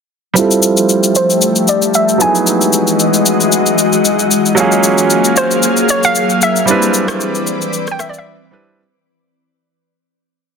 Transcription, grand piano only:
0, 0, Header, 1, 2, 480
1, 0, Start_track
1, 0, Tempo, 526316
1, 331, Time_signature, 4, 2, 24, 8
1, 9636, End_track
2, 0, Start_track
2, 0, Title_t, "Grand piano"
2, 0, Program_c, 0, 0
2, 306, Note_on_c, 0, 55, 75
2, 319, Note_on_c, 0, 60, 66
2, 331, Note_on_c, 0, 64, 67
2, 343, Note_on_c, 0, 65, 67
2, 355, Note_on_c, 0, 69, 80
2, 502, Control_c, 0, 64, 127
2, 1965, Note_off_c, 0, 55, 0
2, 1971, Note_off_c, 0, 60, 0
2, 1977, Note_off_c, 0, 64, 0
2, 1984, Note_off_c, 0, 65, 0
2, 1986, Note_on_c, 0, 54, 59
2, 1990, Note_off_c, 0, 69, 0
2, 1998, Note_on_c, 0, 59, 56
2, 2011, Note_on_c, 0, 63, 57
2, 2022, Control_c, 0, 64, 0
2, 2023, Note_on_c, 0, 64, 55
2, 2036, Note_on_c, 0, 68, 69
2, 2207, Control_c, 0, 64, 127
2, 3882, Note_off_c, 0, 54, 0
2, 3888, Note_off_c, 0, 59, 0
2, 3895, Note_off_c, 0, 63, 0
2, 3901, Note_off_c, 0, 64, 0
2, 3907, Note_off_c, 0, 68, 0
2, 4147, Note_on_c, 0, 54, 74
2, 4160, Note_on_c, 0, 58, 69
2, 4171, Note_on_c, 0, 61, 68
2, 4184, Control_c, 0, 64, 0
2, 4184, Note_on_c, 0, 65, 69
2, 4196, Note_on_c, 0, 68, 79
2, 4336, Control_c, 0, 64, 127
2, 6043, Note_off_c, 0, 54, 0
2, 6049, Note_off_c, 0, 58, 0
2, 6055, Note_off_c, 0, 61, 0
2, 6061, Note_off_c, 0, 65, 0
2, 6067, Note_off_c, 0, 68, 0
2, 6069, Note_on_c, 0, 55, 63
2, 6080, Note_on_c, 0, 60, 60
2, 6093, Note_on_c, 0, 62, 59
2, 6102, Control_c, 0, 64, 0
2, 6105, Note_on_c, 0, 64, 58
2, 6117, Note_on_c, 0, 71, 68
2, 6272, Control_c, 0, 64, 127
2, 7726, Note_off_c, 0, 55, 0
2, 7732, Note_off_c, 0, 60, 0
2, 7738, Note_off_c, 0, 62, 0
2, 7744, Note_off_c, 0, 64, 0
2, 7751, Note_off_c, 0, 71, 0
2, 7759, Note_on_c, 0, 55, 59
2, 7765, Note_on_c, 0, 60, 52
2, 7771, Note_on_c, 0, 62, 53
2, 7777, Note_on_c, 0, 64, 51
2, 7783, Note_on_c, 0, 71, 64
2, 8005, Note_off_c, 0, 55, 0
2, 8008, Note_off_c, 0, 60, 0
2, 8011, Note_off_c, 0, 62, 0
2, 8014, Note_off_c, 0, 64, 0
2, 8017, Note_off_c, 0, 71, 0
2, 8021, Control_c, 0, 64, 0
2, 9636, End_track
0, 0, End_of_file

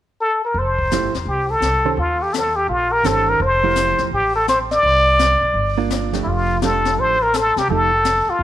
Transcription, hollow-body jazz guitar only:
0, 0, Header, 1, 2, 480
1, 0, Start_track
1, 0, Key_signature, -1, "major"
1, 0, Tempo, 356506
1, 754, Time_signature, 4, 2, 24, 8
1, 11350, End_track
2, 0, Start_track
2, 0, Title_t, "Hollow-body jazz guitar"
2, 0, Program_c, 0, 26
2, 1239, Note_on_c, 0, 53, 46
2, 1251, Note_on_c, 0, 57, 46
2, 1253, Note_on_c, 0, 64, 51
2, 1254, Note_on_c, 0, 67, 53
2, 1510, Note_off_c, 0, 53, 0
2, 1516, Note_off_c, 0, 57, 0
2, 1517, Note_off_c, 0, 64, 0
2, 1518, Note_off_c, 0, 67, 0
2, 2494, Note_on_c, 0, 51, 47
2, 2501, Note_on_c, 0, 61, 50
2, 2501, Note_on_c, 0, 72, 47
2, 2506, Note_on_c, 0, 67, 47
2, 2655, Note_off_c, 0, 51, 0
2, 2658, Note_off_c, 0, 61, 0
2, 2658, Note_off_c, 0, 72, 0
2, 2660, Note_off_c, 0, 67, 0
2, 4106, Note_on_c, 0, 51, 55
2, 4110, Note_on_c, 0, 61, 56
2, 4118, Note_on_c, 0, 67, 50
2, 4122, Note_on_c, 0, 72, 58
2, 4591, Note_off_c, 0, 51, 0
2, 4592, Note_off_c, 0, 61, 0
2, 4596, Note_off_c, 0, 67, 0
2, 4599, Note_off_c, 0, 72, 0
2, 4892, Note_on_c, 0, 57, 50
2, 4897, Note_on_c, 0, 53, 51
2, 4902, Note_on_c, 0, 64, 57
2, 4906, Note_on_c, 0, 67, 51
2, 5516, Note_off_c, 0, 57, 0
2, 5519, Note_off_c, 0, 53, 0
2, 5521, Note_off_c, 0, 64, 0
2, 5523, Note_off_c, 0, 67, 0
2, 7777, Note_on_c, 0, 58, 55
2, 7782, Note_on_c, 0, 62, 60
2, 7782, Note_on_c, 0, 65, 60
2, 8227, Note_off_c, 0, 58, 0
2, 8230, Note_off_c, 0, 62, 0
2, 8230, Note_off_c, 0, 65, 0
2, 8247, Note_on_c, 0, 53, 46
2, 8259, Note_on_c, 0, 57, 49
2, 8263, Note_on_c, 0, 62, 44
2, 8263, Note_on_c, 0, 67, 52
2, 8873, Note_off_c, 0, 53, 0
2, 8880, Note_off_c, 0, 57, 0
2, 8881, Note_off_c, 0, 62, 0
2, 8881, Note_off_c, 0, 67, 0
2, 8919, Note_on_c, 0, 53, 45
2, 8933, Note_on_c, 0, 57, 39
2, 8936, Note_on_c, 0, 67, 48
2, 8940, Note_on_c, 0, 62, 41
2, 9640, Note_off_c, 0, 53, 0
2, 9646, Note_off_c, 0, 57, 0
2, 9648, Note_off_c, 0, 67, 0
2, 9650, Note_off_c, 0, 62, 0
2, 10373, Note_on_c, 0, 53, 45
2, 10388, Note_on_c, 0, 67, 50
2, 10389, Note_on_c, 0, 57, 46
2, 10391, Note_on_c, 0, 63, 45
2, 10637, Note_off_c, 0, 53, 0
2, 10644, Note_off_c, 0, 67, 0
2, 10645, Note_off_c, 0, 57, 0
2, 10645, Note_off_c, 0, 63, 0
2, 11350, End_track
0, 0, End_of_file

